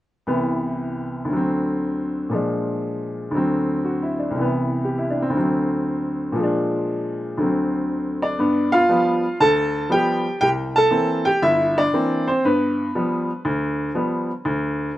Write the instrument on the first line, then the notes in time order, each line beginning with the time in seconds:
upright piano
0.27 C2 C3 E3 B3
1.25 D2 D3
1.33 F#3 C4
2.29 A#2 F3 G#3
2.35 D4
3.31 D2 D3 F#3
3.37 C4
3.85 F#4
4.02 E4
4.19 D4
4.31 C2 C3
4.39 E3 B3
4.85 G4
4.98 E4
5.10 D4
5.22 C4
5.30 D2 D3
5.37 F#3
5.41 C4
6.32 A#2 F3
6.39 G#3
6.44 D4
7.38 D2 D3 F#3
7.42 C4
8.22 D4 D5
8.39 G2 B3
8.72 F4 F5
8.89 F3 G3 B3
9.40 D2 A4 A5
9.90 F3 G3 B3 G5
9.94 G4
10.41 C2 G4 G5
10.76 A4 A5
10.91 E3 A#3 C4
11.25 G4 G5
11.42 G1 E4 E5
11.78 D4 D5
11.93 E3 A#3 C4
12.27 C4 C5
12.45 G2 B3 B4
12.95 F3 G3 B3
13.45 D2
13.95 F3 G3 B3
14.45 D2